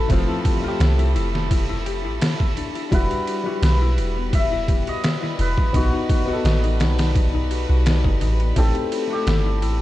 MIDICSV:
0, 0, Header, 1, 8, 480
1, 0, Start_track
1, 0, Key_signature, 1, "minor"
1, 0, Tempo, 705882
1, 64, Time_signature, 4, 2, 24, 8
1, 6676, End_track
2, 0, Start_track
2, 0, Title_t, "Synth texture"
2, 0, Program_c, 0, 99
2, 0, Note_on_c, 0, 83, 84
2, 6676, Note_off_c, 0, 83, 0
2, 6676, End_track
3, 0, Start_track
3, 0, Title_t, "Hammered dulcimer"
3, 0, Program_c, 1, 15
3, 0, Note_on_c, 1, 69, 90
3, 0, Note_on_c, 1, 71, 97
3, 1454, Note_off_c, 1, 71, 0
3, 1825, Note_off_c, 1, 69, 0
3, 2000, Note_on_c, 1, 71, 98
3, 2478, Note_off_c, 1, 71, 0
3, 2480, Note_on_c, 1, 71, 96
3, 2955, Note_on_c, 1, 76, 106
3, 3324, Note_on_c, 1, 75, 110
3, 3365, Note_off_c, 1, 76, 0
3, 3675, Note_off_c, 1, 71, 0
3, 3677, Note_on_c, 1, 71, 105
3, 3917, Note_on_c, 1, 66, 84
3, 4941, Note_off_c, 1, 75, 0
3, 5535, Note_off_c, 1, 71, 0
3, 5836, Note_on_c, 1, 69, 97
3, 6126, Note_off_c, 1, 66, 0
3, 6207, Note_on_c, 1, 67, 99
3, 6676, Note_off_c, 1, 67, 0
3, 6676, Note_off_c, 1, 69, 0
3, 6676, End_track
4, 0, Start_track
4, 0, Title_t, "Harp"
4, 0, Program_c, 2, 46
4, 0, Note_on_c, 2, 59, 82
4, 0, Note_on_c, 2, 66, 100
4, 0, Note_on_c, 2, 76, 106
4, 66, Note_on_c, 2, 64, 79
4, 189, Note_off_c, 2, 64, 0
4, 192, Note_on_c, 2, 64, 98
4, 305, Note_on_c, 2, 67, 78
4, 346, Note_off_c, 2, 66, 0
4, 432, Note_on_c, 2, 65, 98
4, 473, Note_off_c, 2, 64, 0
4, 473, Note_off_c, 2, 76, 0
4, 545, Note_on_c, 2, 76, 91
4, 586, Note_off_c, 2, 65, 0
4, 672, Note_on_c, 2, 64, 104
4, 781, Note_off_c, 2, 64, 0
4, 784, Note_on_c, 2, 64, 98
4, 908, Note_off_c, 2, 59, 0
4, 911, Note_on_c, 2, 59, 75
4, 1020, Note_off_c, 2, 64, 0
4, 1023, Note_on_c, 2, 64, 78
4, 1146, Note_off_c, 2, 64, 0
4, 1149, Note_on_c, 2, 64, 98
4, 1261, Note_off_c, 2, 67, 0
4, 1264, Note_on_c, 2, 67, 108
4, 1387, Note_off_c, 2, 64, 0
4, 1390, Note_on_c, 2, 64, 77
4, 1503, Note_off_c, 2, 64, 0
4, 1505, Note_on_c, 2, 64, 82
4, 1630, Note_off_c, 2, 76, 0
4, 1633, Note_on_c, 2, 76, 73
4, 1746, Note_on_c, 2, 62, 78
4, 1868, Note_off_c, 2, 64, 0
4, 1871, Note_on_c, 2, 64, 80
4, 1982, Note_off_c, 2, 64, 0
4, 1985, Note_on_c, 2, 64, 78
4, 2110, Note_off_c, 2, 64, 0
4, 2113, Note_on_c, 2, 64, 92
4, 2222, Note_off_c, 2, 67, 0
4, 2224, Note_on_c, 2, 67, 81
4, 2351, Note_on_c, 2, 66, 106
4, 2392, Note_off_c, 2, 67, 0
4, 2461, Note_off_c, 2, 76, 0
4, 2464, Note_on_c, 2, 76, 89
4, 2588, Note_off_c, 2, 64, 0
4, 2591, Note_on_c, 2, 64, 103
4, 2699, Note_off_c, 2, 64, 0
4, 2702, Note_on_c, 2, 64, 96
4, 2826, Note_off_c, 2, 59, 0
4, 2829, Note_on_c, 2, 59, 75
4, 2941, Note_off_c, 2, 64, 0
4, 2943, Note_on_c, 2, 64, 78
4, 3069, Note_off_c, 2, 64, 0
4, 3072, Note_on_c, 2, 64, 96
4, 3186, Note_on_c, 2, 67, 81
4, 3227, Note_off_c, 2, 66, 0
4, 3312, Note_on_c, 2, 66, 99
4, 3353, Note_off_c, 2, 67, 0
4, 3425, Note_off_c, 2, 76, 0
4, 3427, Note_on_c, 2, 76, 107
4, 3551, Note_off_c, 2, 64, 0
4, 3553, Note_on_c, 2, 64, 99
4, 3650, Note_off_c, 2, 62, 0
4, 3662, Note_off_c, 2, 64, 0
4, 3665, Note_on_c, 2, 64, 96
4, 3790, Note_off_c, 2, 59, 0
4, 3792, Note_on_c, 2, 59, 77
4, 3906, Note_on_c, 2, 63, 85
4, 3947, Note_off_c, 2, 64, 0
4, 3947, Note_off_c, 2, 76, 0
4, 4030, Note_off_c, 2, 63, 0
4, 4032, Note_on_c, 2, 63, 102
4, 4142, Note_off_c, 2, 66, 0
4, 4145, Note_on_c, 2, 66, 81
4, 4267, Note_off_c, 2, 66, 0
4, 4270, Note_on_c, 2, 66, 99
4, 4385, Note_on_c, 2, 75, 95
4, 4509, Note_off_c, 2, 63, 0
4, 4512, Note_on_c, 2, 63, 100
4, 4624, Note_off_c, 2, 63, 0
4, 4627, Note_on_c, 2, 63, 100
4, 4750, Note_off_c, 2, 59, 0
4, 4752, Note_on_c, 2, 59, 76
4, 4863, Note_off_c, 2, 63, 0
4, 4866, Note_on_c, 2, 63, 81
4, 4988, Note_off_c, 2, 63, 0
4, 4991, Note_on_c, 2, 63, 102
4, 5102, Note_off_c, 2, 66, 0
4, 5104, Note_on_c, 2, 66, 83
4, 5227, Note_off_c, 2, 66, 0
4, 5230, Note_on_c, 2, 66, 100
4, 5341, Note_off_c, 2, 75, 0
4, 5344, Note_on_c, 2, 75, 111
4, 5468, Note_off_c, 2, 63, 0
4, 5471, Note_on_c, 2, 63, 103
4, 5583, Note_off_c, 2, 63, 0
4, 5586, Note_on_c, 2, 63, 104
4, 5710, Note_off_c, 2, 59, 0
4, 5712, Note_on_c, 2, 59, 80
4, 5823, Note_on_c, 2, 64, 81
4, 5864, Note_off_c, 2, 63, 0
4, 5864, Note_off_c, 2, 75, 0
4, 5948, Note_off_c, 2, 64, 0
4, 5950, Note_on_c, 2, 64, 93
4, 6065, Note_on_c, 2, 67, 81
4, 6105, Note_off_c, 2, 66, 0
4, 6189, Note_on_c, 2, 66, 100
4, 6230, Note_off_c, 2, 67, 0
4, 6303, Note_on_c, 2, 76, 90
4, 6427, Note_off_c, 2, 64, 0
4, 6429, Note_on_c, 2, 64, 104
4, 6538, Note_off_c, 2, 64, 0
4, 6541, Note_on_c, 2, 64, 99
4, 6667, Note_off_c, 2, 59, 0
4, 6676, Note_off_c, 2, 64, 0
4, 6676, Note_off_c, 2, 66, 0
4, 6676, Note_off_c, 2, 76, 0
4, 6676, End_track
5, 0, Start_track
5, 0, Title_t, "Violin section"
5, 0, Program_c, 3, 48
5, 0, Note_on_c, 3, 57, 84
5, 0, Note_on_c, 3, 69, 86
5, 1986, Note_on_c, 3, 55, 80
5, 1986, Note_on_c, 3, 71, 84
5, 1995, Note_off_c, 3, 57, 0
5, 1995, Note_off_c, 3, 69, 0
5, 6676, Note_off_c, 3, 55, 0
5, 6676, Note_off_c, 3, 71, 0
5, 6676, End_track
6, 0, Start_track
6, 0, Title_t, "Upright piano"
6, 0, Program_c, 4, 0
6, 0, Control_c, 4, 64, 127
6, 58, Note_on_c, 4, 57, 94
6, 70, Note_on_c, 4, 60, 90
6, 73, Control_c, 4, 64, 0
6, 81, Note_on_c, 4, 53, 110
6, 189, Control_c, 4, 64, 127
6, 398, Note_off_c, 4, 57, 0
6, 403, Note_off_c, 4, 60, 0
6, 409, Note_off_c, 4, 53, 0
6, 412, Note_on_c, 4, 57, 82
6, 463, Note_on_c, 4, 67, 97
6, 1948, Note_off_c, 4, 57, 0
6, 1973, Note_off_c, 4, 67, 0
6, 1979, Note_on_c, 4, 55, 91
6, 1991, Note_on_c, 4, 64, 85
6, 1994, Control_c, 4, 64, 0
6, 2005, Note_on_c, 4, 66, 104
6, 2130, Control_c, 4, 64, 127
6, 2318, Note_off_c, 4, 55, 0
6, 2324, Note_off_c, 4, 64, 0
6, 2331, Note_off_c, 4, 66, 0
6, 2336, Note_on_c, 4, 55, 86
6, 2359, Note_on_c, 4, 64, 77
6, 3870, Note_off_c, 4, 55, 0
6, 3881, Note_off_c, 4, 64, 0
6, 3897, Note_on_c, 4, 59, 100
6, 3911, Note_on_c, 4, 63, 92
6, 3912, Control_c, 4, 64, 0
6, 3922, Note_on_c, 4, 66, 99
6, 4038, Control_c, 4, 64, 127
6, 4237, Note_off_c, 4, 59, 0
6, 4244, Note_off_c, 4, 63, 0
6, 4250, Note_off_c, 4, 66, 0
6, 4256, Note_on_c, 4, 59, 82
6, 4280, Note_on_c, 4, 63, 76
6, 4305, Note_on_c, 4, 69, 95
6, 5789, Note_off_c, 4, 59, 0
6, 5801, Note_off_c, 4, 63, 0
6, 5814, Note_off_c, 4, 69, 0
6, 5820, Note_on_c, 4, 57, 101
6, 5831, Note_on_c, 4, 60, 92
6, 5834, Control_c, 4, 64, 0
6, 5844, Note_on_c, 4, 67, 111
6, 5968, Control_c, 4, 64, 127
6, 6158, Note_off_c, 4, 57, 0
6, 6164, Note_off_c, 4, 60, 0
6, 6170, Note_on_c, 4, 57, 80
6, 6171, Note_off_c, 4, 67, 0
6, 6219, Note_on_c, 4, 69, 92
6, 6676, Note_off_c, 4, 57, 0
6, 6676, Note_off_c, 4, 69, 0
6, 6676, End_track
7, 0, Start_track
7, 0, Title_t, "808-style bass"
7, 0, Program_c, 5, 38
7, 66, Note_on_c, 5, 29, 96
7, 177, Note_off_c, 5, 29, 0
7, 544, Note_on_c, 5, 36, 88
7, 785, Note_on_c, 5, 29, 98
7, 795, Note_off_c, 5, 36, 0
7, 1390, Note_on_c, 5, 33, 96
7, 1400, Note_off_c, 5, 29, 0
7, 1490, Note_off_c, 5, 33, 0
7, 1985, Note_on_c, 5, 28, 97
7, 2096, Note_off_c, 5, 28, 0
7, 2463, Note_on_c, 5, 35, 90
7, 2704, Note_on_c, 5, 28, 97
7, 2715, Note_off_c, 5, 35, 0
7, 3287, Note_off_c, 5, 28, 0
7, 3665, Note_on_c, 5, 28, 98
7, 3776, Note_off_c, 5, 28, 0
7, 3904, Note_on_c, 5, 35, 99
7, 4016, Note_off_c, 5, 35, 0
7, 4382, Note_on_c, 5, 33, 84
7, 4624, Note_on_c, 5, 35, 97
7, 4634, Note_off_c, 5, 33, 0
7, 5206, Note_off_c, 5, 35, 0
7, 5231, Note_on_c, 5, 35, 84
7, 5466, Note_off_c, 5, 35, 0
7, 5470, Note_on_c, 5, 30, 81
7, 5586, Note_on_c, 5, 33, 108
7, 5596, Note_off_c, 5, 30, 0
7, 5798, Note_off_c, 5, 33, 0
7, 5823, Note_on_c, 5, 33, 102
7, 5935, Note_off_c, 5, 33, 0
7, 6302, Note_on_c, 5, 31, 89
7, 6544, Note_on_c, 5, 33, 92
7, 6554, Note_off_c, 5, 31, 0
7, 6676, Note_off_c, 5, 33, 0
7, 6676, End_track
8, 0, Start_track
8, 0, Title_t, "Drums"
8, 66, Note_on_c, 9, 36, 110
8, 67, Note_on_c, 9, 51, 84
8, 134, Note_off_c, 9, 36, 0
8, 135, Note_off_c, 9, 51, 0
8, 306, Note_on_c, 9, 36, 102
8, 306, Note_on_c, 9, 51, 76
8, 374, Note_off_c, 9, 36, 0
8, 374, Note_off_c, 9, 51, 0
8, 546, Note_on_c, 9, 51, 82
8, 551, Note_on_c, 9, 38, 114
8, 614, Note_off_c, 9, 51, 0
8, 619, Note_off_c, 9, 38, 0
8, 673, Note_on_c, 9, 51, 45
8, 741, Note_off_c, 9, 51, 0
8, 788, Note_on_c, 9, 51, 69
8, 856, Note_off_c, 9, 51, 0
8, 919, Note_on_c, 9, 38, 53
8, 987, Note_off_c, 9, 38, 0
8, 1026, Note_on_c, 9, 36, 114
8, 1026, Note_on_c, 9, 51, 89
8, 1094, Note_off_c, 9, 36, 0
8, 1094, Note_off_c, 9, 51, 0
8, 1267, Note_on_c, 9, 51, 70
8, 1335, Note_off_c, 9, 51, 0
8, 1506, Note_on_c, 9, 51, 91
8, 1511, Note_on_c, 9, 38, 127
8, 1574, Note_off_c, 9, 51, 0
8, 1579, Note_off_c, 9, 38, 0
8, 1632, Note_on_c, 9, 36, 90
8, 1700, Note_off_c, 9, 36, 0
8, 1747, Note_on_c, 9, 51, 70
8, 1815, Note_off_c, 9, 51, 0
8, 1872, Note_on_c, 9, 51, 45
8, 1940, Note_off_c, 9, 51, 0
8, 1985, Note_on_c, 9, 36, 112
8, 1987, Note_on_c, 9, 51, 89
8, 2053, Note_off_c, 9, 36, 0
8, 2055, Note_off_c, 9, 51, 0
8, 2113, Note_on_c, 9, 51, 43
8, 2181, Note_off_c, 9, 51, 0
8, 2226, Note_on_c, 9, 51, 74
8, 2294, Note_off_c, 9, 51, 0
8, 2465, Note_on_c, 9, 51, 83
8, 2470, Note_on_c, 9, 38, 114
8, 2533, Note_off_c, 9, 51, 0
8, 2538, Note_off_c, 9, 38, 0
8, 2706, Note_on_c, 9, 51, 72
8, 2774, Note_off_c, 9, 51, 0
8, 2944, Note_on_c, 9, 36, 116
8, 2946, Note_on_c, 9, 51, 83
8, 3012, Note_off_c, 9, 36, 0
8, 3014, Note_off_c, 9, 51, 0
8, 3184, Note_on_c, 9, 36, 101
8, 3185, Note_on_c, 9, 51, 69
8, 3252, Note_off_c, 9, 36, 0
8, 3253, Note_off_c, 9, 51, 0
8, 3313, Note_on_c, 9, 51, 42
8, 3381, Note_off_c, 9, 51, 0
8, 3425, Note_on_c, 9, 51, 91
8, 3430, Note_on_c, 9, 38, 119
8, 3493, Note_off_c, 9, 51, 0
8, 3498, Note_off_c, 9, 38, 0
8, 3558, Note_on_c, 9, 38, 37
8, 3626, Note_off_c, 9, 38, 0
8, 3665, Note_on_c, 9, 51, 68
8, 3733, Note_off_c, 9, 51, 0
8, 3791, Note_on_c, 9, 36, 94
8, 3859, Note_off_c, 9, 36, 0
8, 3904, Note_on_c, 9, 36, 107
8, 3905, Note_on_c, 9, 51, 90
8, 3972, Note_off_c, 9, 36, 0
8, 3973, Note_off_c, 9, 51, 0
8, 4144, Note_on_c, 9, 36, 111
8, 4146, Note_on_c, 9, 51, 72
8, 4212, Note_off_c, 9, 36, 0
8, 4214, Note_off_c, 9, 51, 0
8, 4386, Note_on_c, 9, 51, 85
8, 4391, Note_on_c, 9, 38, 115
8, 4454, Note_off_c, 9, 51, 0
8, 4459, Note_off_c, 9, 38, 0
8, 4514, Note_on_c, 9, 51, 43
8, 4582, Note_off_c, 9, 51, 0
8, 4624, Note_on_c, 9, 51, 78
8, 4629, Note_on_c, 9, 38, 107
8, 4692, Note_off_c, 9, 51, 0
8, 4697, Note_off_c, 9, 38, 0
8, 4751, Note_on_c, 9, 51, 71
8, 4755, Note_on_c, 9, 38, 101
8, 4819, Note_off_c, 9, 51, 0
8, 4823, Note_off_c, 9, 38, 0
8, 4864, Note_on_c, 9, 36, 118
8, 4865, Note_on_c, 9, 51, 85
8, 4932, Note_off_c, 9, 36, 0
8, 4933, Note_off_c, 9, 51, 0
8, 5106, Note_on_c, 9, 51, 71
8, 5174, Note_off_c, 9, 51, 0
8, 5345, Note_on_c, 9, 51, 96
8, 5349, Note_on_c, 9, 38, 126
8, 5413, Note_off_c, 9, 51, 0
8, 5417, Note_off_c, 9, 38, 0
8, 5470, Note_on_c, 9, 36, 89
8, 5538, Note_off_c, 9, 36, 0
8, 5583, Note_on_c, 9, 51, 67
8, 5651, Note_off_c, 9, 51, 0
8, 5711, Note_on_c, 9, 51, 45
8, 5779, Note_off_c, 9, 51, 0
8, 5823, Note_on_c, 9, 51, 88
8, 5824, Note_on_c, 9, 36, 106
8, 5891, Note_off_c, 9, 51, 0
8, 5892, Note_off_c, 9, 36, 0
8, 5950, Note_on_c, 9, 51, 45
8, 6018, Note_off_c, 9, 51, 0
8, 6065, Note_on_c, 9, 51, 78
8, 6133, Note_off_c, 9, 51, 0
8, 6303, Note_on_c, 9, 51, 82
8, 6308, Note_on_c, 9, 38, 117
8, 6371, Note_off_c, 9, 51, 0
8, 6376, Note_off_c, 9, 38, 0
8, 6544, Note_on_c, 9, 51, 68
8, 6612, Note_off_c, 9, 51, 0
8, 6676, End_track
0, 0, End_of_file